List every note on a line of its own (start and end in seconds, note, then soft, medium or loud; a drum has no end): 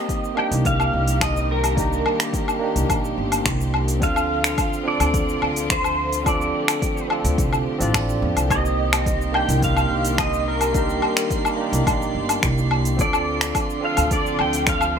0.00 3.98 D#3 medium
0.00 3.98 G3 medium
0.00 0.33 A#3 medium
0.00 3.98 A#3 medium
0.00 0.34 C4 medium
0.00 10.71 C4 medium
0.00 0.34 D#4 medium
0.00 0.35 G4 medium
0.00 3.98 G4 medium
0.00 0.38 D#5 loud
0.09 kick loud
0.09 open hi-hat soft
0.09 cabasa medium
0.24 cabasa soft
0.35 1.73 A#3 medium
0.35 1.73 D4 medium
0.35 1.74 D#4 medium
0.35 0.46 G5 loud
0.35 low woodblock medium
0.39 1.75 G4 medium
0.51 0.89 C2 medium
0.51 open hi-hat medium
0.51 cabasa medium
0.65 1.23 F5 loud
0.65 kick loud
0.65 open hi-hat soft
0.65 cabasa medium
0.80 cabasa soft
0.80 low woodblock medium
0.94 2.01 C2 medium
1.07 open hi-hat medium
1.07 cabasa medium
1.21 1.48 D#5 medium
1.21 finger snap medium
1.21 kick loud
1.21 open hi-hat soft
1.21 cabasa medium
1.21 low woodblock medium
1.37 cabasa soft
1.51 3.14 A#4 medium
1.64 open hi-hat medium
1.64 cabasa medium
1.64 low woodblock medium
1.75 2.57 A#3 medium
1.75 2.58 D4 medium
1.75 2.58 D#4 medium
1.75 kick loud
1.75 open hi-hat soft
1.75 cabasa medium
1.79 2.59 G4 medium
1.93 cabasa soft
2.06 low woodblock medium
2.20 finger snap medium
2.20 open hi-hat medium
2.20 cabasa medium
2.33 kick loud
2.33 open hi-hat soft
2.33 cabasa medium
2.48 cabasa soft
2.48 low woodblock medium
2.59 3.97 A#3 medium
2.59 3.98 D4 medium
2.59 3.99 D#4 medium
2.63 3.99 G4 medium
2.76 2.87 C2 medium
2.76 open hi-hat medium
2.76 cabasa medium
2.89 3.12 A#1 medium
2.89 kick loud
2.89 open hi-hat soft
2.89 cabasa medium
2.89 low woodblock medium
3.05 cabasa soft
3.18 3.40 G1 medium
3.32 open hi-hat medium
3.32 cabasa medium
3.32 low woodblock medium
3.46 4.02 C2 medium
3.46 finger snap medium
3.46 kick loud
3.46 open hi-hat soft
3.46 cabasa medium
3.61 cabasa soft
3.74 low woodblock medium
3.88 open hi-hat medium
3.88 cabasa medium
4.00 4.53 D2 medium
4.00 8.47 D3 medium
4.00 8.47 F3 medium
4.00 8.47 A3 medium
4.00 4.81 C4 medium
4.00 4.82 D4 medium
4.00 4.83 F4 medium
4.00 6.24 F4 loud
4.00 4.83 F5 loud
4.00 kick loud
4.00 open hi-hat soft
4.00 cabasa medium
4.04 4.84 A4 medium
4.16 cabasa soft
4.16 low woodblock medium
4.44 finger snap medium
4.44 open hi-hat medium
4.44 cabasa medium
4.58 kick loud
4.58 open hi-hat soft
4.58 cabasa medium
4.58 low woodblock medium
4.73 cabasa soft
4.84 6.22 C4 medium
4.84 6.22 D4 medium
4.84 6.23 F4 medium
4.88 6.24 A4 medium
4.88 5.67 D5 loud
5.00 5.38 D2 loud
5.00 open hi-hat medium
5.00 cabasa medium
5.00 low woodblock medium
5.14 kick loud
5.14 open hi-hat soft
5.14 cabasa medium
5.29 cabasa soft
5.42 6.50 D2 medium
5.42 low woodblock medium
5.56 open hi-hat medium
5.56 cabasa medium
5.70 6.29 C5 medium
5.70 finger snap medium
5.70 kick loud
5.70 open hi-hat soft
5.70 cabasa medium
5.84 cabasa soft
5.84 low woodblock medium
6.12 open hi-hat medium
6.12 cabasa medium
6.23 7.06 C4 medium
6.23 7.06 D4 medium
6.23 7.07 F4 medium
6.23 12.95 G4 medium
6.23 kick loud
6.23 open hi-hat soft
6.23 cabasa medium
6.23 low woodblock medium
6.28 7.08 A4 medium
6.28 7.07 D5 medium
6.41 cabasa soft
6.68 finger snap medium
6.68 open hi-hat medium
6.68 cabasa medium
6.68 low woodblock medium
6.82 kick loud
6.82 open hi-hat soft
6.82 cabasa medium
6.97 cabasa soft
7.08 7.77 C4 medium
7.08 7.77 D4 medium
7.08 7.78 F4 medium
7.08 low woodblock medium
7.13 7.79 A4 medium
7.24 7.35 D2 loud
7.24 open hi-hat medium
7.24 cabasa medium
7.38 7.61 C2 medium
7.38 kick loud
7.38 open hi-hat soft
7.38 cabasa medium
7.53 cabasa soft
7.53 low woodblock medium
7.78 8.24 A1 medium
7.78 8.46 C4 medium
7.78 8.47 D4 medium
7.78 8.47 F4 medium
7.78 open hi-hat medium
7.78 cabasa medium
7.83 8.48 D5 loud
7.94 finger snap medium
7.94 kick loud
7.94 open hi-hat soft
7.94 cabasa medium
7.94 low woodblock medium
8.09 cabasa soft
8.22 8.34 F2 loud
8.36 9.44 C2 medium
8.36 open hi-hat medium
8.36 cabasa medium
8.36 low woodblock medium
8.48 12.95 D#3 medium
8.48 12.95 G3 medium
8.48 9.30 A#3 medium
8.48 12.95 A#3 medium
8.48 9.31 C4 medium
8.48 9.31 D#4 medium
8.48 9.37 D#5 loud
8.48 14.99 C6 medium
8.48 kick loud
8.48 open hi-hat soft
8.48 cabasa medium
8.48 low woodblock medium
8.52 9.32 G4 medium
8.66 cabasa soft
8.93 finger snap medium
8.93 open hi-hat medium
8.93 cabasa medium
8.93 low woodblock medium
9.06 kick loud
9.06 open hi-hat soft
9.06 cabasa medium
9.21 cabasa soft
9.32 10.70 A#3 medium
9.32 10.71 D4 medium
9.32 10.72 D#4 medium
9.32 9.61 G5 loud
9.32 low woodblock medium
9.36 10.72 G4 medium
9.48 9.86 C2 loud
9.48 open hi-hat medium
9.48 cabasa medium
9.62 10.21 F5 loud
9.62 kick loud
9.62 open hi-hat soft
9.62 cabasa medium
9.77 cabasa soft
9.77 low woodblock medium
9.90 10.98 C2 medium
10.05 open hi-hat medium
10.05 cabasa medium
10.18 10.45 D#5 loud
10.18 finger snap medium
10.18 kick loud
10.18 open hi-hat soft
10.18 cabasa medium
10.18 low woodblock medium
10.34 cabasa soft
10.48 12.11 A#4 medium
10.61 open hi-hat medium
10.61 cabasa medium
10.61 low woodblock medium
10.72 11.54 A#3 medium
10.72 11.55 D4 medium
10.72 11.56 D#4 medium
10.72 12.96 D5 medium
10.72 kick loud
10.72 open hi-hat soft
10.72 cabasa medium
10.77 11.56 G4 medium
10.89 cabasa soft
11.02 low woodblock medium
11.17 finger snap medium
11.17 open hi-hat medium
11.17 cabasa medium
11.31 kick loud
11.31 open hi-hat soft
11.31 cabasa medium
11.45 cabasa soft
11.45 low woodblock medium
11.56 12.94 A#3 medium
11.56 12.95 D4 medium
11.56 12.96 D#4 medium
11.61 12.97 G4 medium
11.72 11.84 C2 loud
11.72 open hi-hat medium
11.72 cabasa medium
11.87 12.09 A#1 medium
11.87 kick loud
11.87 open hi-hat soft
11.87 cabasa medium
11.87 low woodblock medium
12.02 cabasa soft
12.15 12.37 G1 medium
12.29 open hi-hat medium
12.29 cabasa medium
12.29 low woodblock medium
12.43 12.95 C2 medium
12.43 finger snap medium
12.43 kick loud
12.43 open hi-hat soft
12.43 cabasa medium
12.58 cabasa soft
12.71 low woodblock medium
12.85 open hi-hat medium
12.85 cabasa medium
12.97 13.51 D2 medium
12.97 14.99 D3 medium
12.97 14.99 F3 medium
12.97 14.99 A3 medium
12.97 13.79 C4 medium
12.97 14.99 C4 medium
12.97 13.79 D4 medium
12.97 14.99 F4 medium
12.97 13.80 F4 medium
12.97 kick loud
12.97 open hi-hat soft
12.97 cabasa medium
13.01 13.81 A4 medium
13.01 13.87 D5 loud
13.13 cabasa soft
13.13 low woodblock medium
13.41 finger snap medium
13.41 open hi-hat medium
13.41 cabasa medium
13.55 kick loud
13.55 open hi-hat soft
13.55 cabasa medium
13.55 low woodblock medium
13.70 cabasa soft
13.81 14.99 C4 medium
13.81 14.99 D4 medium
13.81 14.99 F4 medium
13.81 14.12 F5 medium
13.85 14.99 A4 medium
13.97 14.35 D2 loud
13.97 open hi-hat medium
13.97 cabasa medium
13.97 low woodblock medium
14.11 14.41 D5 medium
14.11 kick loud
14.11 open hi-hat soft
14.11 cabasa medium
14.26 cabasa soft
14.39 14.99 D2 medium
14.39 14.66 G5 loud
14.39 low woodblock medium
14.53 open hi-hat medium
14.53 cabasa medium
14.67 14.94 F5 loud
14.67 finger snap medium
14.67 kick loud
14.67 open hi-hat soft
14.67 cabasa medium
14.81 cabasa soft
14.81 low woodblock medium